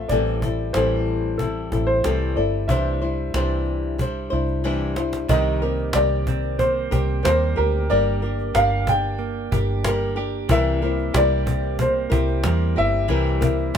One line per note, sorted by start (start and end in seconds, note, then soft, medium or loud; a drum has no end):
0.00 0.10 A3 soft
0.00 0.10 C4 soft
0.00 0.11 F4 soft
0.00 0.10 A4 soft
0.00 0.11 E5 medium
0.09 0.71 A1 medium
0.09 0.43 A2 medium
0.09 0.43 E3 medium
0.09 0.43 G3 medium
0.09 0.43 C4 medium
0.09 0.43 E4 medium
0.09 0.42 A4 medium
0.09 0.76 D5 medium
0.09 cajon bass medium
0.42 0.74 G3 soft
0.42 0.75 C4 soft
0.42 0.75 E4 soft
0.42 0.75 A4 soft
0.42 cajon bass medium
0.73 1.69 A1 medium
0.73 1.40 A2 medium
0.73 2.04 E3 medium
0.73 1.39 G3 medium
0.73 1.39 C4 medium
0.73 1.41 E4 medium
0.73 1.41 A4 medium
0.73 1.41 C5 medium
0.73 cajon slap loud
1.06 cajon slap soft
1.38 1.72 G3 medium
1.38 1.72 C4 medium
1.38 1.89 A4 medium
1.38 cajon bass medium
1.42 1.71 E4 medium
1.42 1.71 A4 medium
1.72 2.02 A1 medium
1.72 2.03 G3 soft
1.72 2.04 C4 soft
1.72 2.05 E4 soft
1.72 2.04 A4 soft
1.72 cajon bass medium
1.87 2.33 C5 medium
2.04 2.35 C2 medium
2.04 2.37 A2 medium
2.04 2.37 E3 medium
2.04 2.37 G3 medium
2.04 2.37 C4 medium
2.04 2.36 E4 medium
2.04 2.35 A4 medium
2.04 cajon slap medium
2.36 2.67 G1 medium
2.36 2.69 C4 soft
2.36 2.70 E4 soft
2.36 2.70 A4 soft
2.36 2.70 D5 medium
2.36 cajon slap soft
2.40 2.69 G3 soft
2.68 3.31 C2 medium
2.68 3.02 C3 medium
2.68 3.02 E3 medium
2.68 3.03 G3 medium
2.68 3.02 D4 medium
2.68 3.01 E4 medium
2.68 3.00 C5 medium
2.68 4.60 E5 medium
2.68 cajon bass medium
3.01 3.34 G3 soft
3.01 3.35 D4 soft
3.01 3.35 E4 soft
3.01 3.35 C5 soft
3.01 cajon slap soft
3.18 cajon slap soft
3.34 4.28 C2 medium
3.34 4.00 C3 medium
3.34 4.00 E3 medium
3.34 3.98 G3 medium
3.34 3.99 D4 medium
3.34 3.99 E4 medium
3.34 4.01 C5 medium
3.34 cajon slap loud
3.66 cajon slap soft
3.84 cajon slap soft
3.98 4.32 G3 medium
3.98 4.31 D4 medium
3.98 4.31 E4 medium
3.98 4.29 C5 medium
3.98 cajon bass medium
4.30 5.26 C2 medium
4.30 4.63 G3 soft
4.30 4.64 D4 soft
4.30 4.64 E4 soft
4.30 4.64 C5 medium
4.30 cajon slap soft
4.48 cajon slap soft
4.64 4.97 C3 medium
4.64 4.97 E3 medium
4.64 4.97 G3 medium
4.64 4.97 D4 medium
4.64 4.96 E4 medium
4.64 4.95 C5 medium
4.64 cajon slap soft
4.96 5.28 G3 soft
4.96 5.30 D4 soft
4.96 5.29 E4 soft
4.96 5.29 C5 soft
4.96 cajon slap medium
5.13 cajon slap medium
5.28 5.91 C2 medium
5.28 5.62 C3 medium
5.28 5.62 D#3 medium
5.28 7.90 D#3 medium
5.28 5.62 G3 medium
5.28 5.63 C4 medium
5.28 5.62 G4 medium
5.28 5.61 A#4 medium
5.28 5.97 D#5 medium
5.28 cajon bass loud
5.61 5.94 G3 soft
5.61 6.59 A#3 medium
5.61 5.94 C4 soft
5.61 5.95 G4 soft
5.61 5.95 A#4 soft
5.61 cajon slap soft
5.78 cajon slap soft
5.93 6.89 C2 medium
5.93 6.94 G3 medium
5.93 6.93 C4 medium
5.93 6.92 G4 medium
5.93 6.62 D5 medium
5.93 cajon slap loud
5.97 6.91 A#4 medium
6.27 7.97 C4 medium
6.27 cajon bass medium
6.59 7.23 A#3 medium
6.59 7.23 C5 medium
6.59 cajon bass medium
6.91 7.23 C2 medium
6.91 7.22 G3 soft
6.91 7.23 C4 soft
6.91 7.57 G4 medium
6.91 7.24 G4 soft
6.91 7.24 A#4 medium
6.91 cajon bass medium
7.23 7.55 D#2 medium
7.23 7.57 G3 medium
7.23 7.89 A#3 medium
7.23 7.57 C4 medium
7.23 7.56 G4 medium
7.23 7.55 A#4 medium
7.23 7.58 C5 medium
7.23 cajon slap loud
7.56 7.88 D2 medium
7.56 7.89 G3 soft
7.56 7.90 C4 soft
7.56 7.89 G4 soft
7.56 8.54 G4 medium
7.56 7.89 A#4 medium
7.56 7.91 A#4 medium
7.56 cajon slap soft
7.90 8.52 G1 medium
7.90 8.22 G3 medium
7.90 8.22 A#3 medium
7.90 8.23 D4 medium
7.90 8.23 G4 medium
7.90 8.21 A#4 medium
7.90 8.57 D5 medium
7.90 cajon slap soft
8.22 9.18 A#3 soft
8.22 8.55 D4 soft
8.22 8.55 G4 medium
8.22 8.55 A#4 soft
8.22 cajon slap soft
8.39 cajon slap soft
8.54 9.49 G1 medium
8.54 9.84 G3 medium
8.54 9.53 D4 medium
8.54 9.52 G4 medium
8.54 9.54 G4 medium
8.54 9.53 A#4 medium
8.54 8.89 F5 medium
8.54 cajon slap loud
8.87 10.56 D4 medium
8.87 9.49 G5 loud
8.87 cajon bass medium
9.04 cajon slap soft
9.19 9.85 A#3 medium
9.19 cajon slap soft
9.52 10.46 G1 medium
9.52 10.17 G4 medium
9.52 9.85 G4 soft
9.52 9.85 A#4 soft
9.52 cajon bass medium
9.56 9.85 D4 soft
9.84 10.17 G3 medium
9.84 10.82 A#3 medium
9.84 10.17 D4 medium
9.84 10.16 G4 medium
9.84 10.15 A#4 medium
9.84 cajon slap loud
10.16 10.50 D4 soft
10.16 11.14 G4 medium
10.16 10.50 G4 soft
10.16 10.49 A#4 medium
10.16 cajon slap soft
10.49 11.11 C2 medium
10.49 10.82 C3 medium
10.49 10.82 E3 medium
10.49 13.08 E3 medium
10.49 10.82 G3 medium
10.49 10.83 C4 medium
10.49 10.82 E4 medium
10.49 10.81 A#4 medium
10.49 11.18 E5 loud
10.49 cajon bass loud
10.82 11.13 G3 soft
10.82 11.78 A#3 medium
10.82 11.14 C4 soft
10.82 11.14 E4 soft
10.82 11.15 A#4 soft
10.82 cajon slap soft
10.98 cajon slap soft
11.14 12.08 C2 medium
11.14 12.13 G3 medium
11.14 12.12 C4 medium
11.14 12.10 E4 medium
11.14 12.12 G4 medium
11.14 12.09 A#4 medium
11.14 11.77 D5 loud
11.14 cajon slap loud
11.46 13.78 C4 medium
11.46 cajon bass medium
11.63 cajon slap soft
11.79 12.43 A#3 medium
11.79 12.81 C5 medium
11.79 cajon bass medium
12.10 12.42 C2 medium
12.10 12.42 G3 soft
12.10 12.43 C4 soft
12.10 12.44 E4 soft
12.10 12.77 G4 medium
12.10 12.44 A#4 medium
12.10 cajon bass medium
12.28 cajon slap soft
12.43 12.75 E2 medium
12.43 12.77 G3 medium
12.43 13.41 A#3 medium
12.43 12.76 C4 medium
12.43 12.76 E4 medium
12.43 12.75 A#4 medium
12.43 cajon slap loud
12.76 13.08 G1 medium
12.76 13.07 G3 soft
12.76 13.07 C4 soft
12.76 13.09 E4 soft
12.76 13.75 G4 medium
12.76 13.09 A#4 soft
12.76 13.78 E5 loud
12.76 cajon slap soft
13.08 13.71 C2 loud
13.08 13.42 C3 medium
13.08 13.42 E3 medium
13.08 13.78 E3 medium
13.08 13.42 G3 medium
13.08 13.41 C4 medium
13.08 13.40 E4 medium
13.08 13.40 A#4 medium
13.08 cajon slap soft
13.41 13.73 G3 soft
13.41 13.78 A#3 medium
13.41 13.74 C4 soft
13.41 13.75 E4 soft
13.41 13.74 A#4 medium
13.41 cajon bass loud
13.59 cajon slap soft
13.74 13.78 G3 medium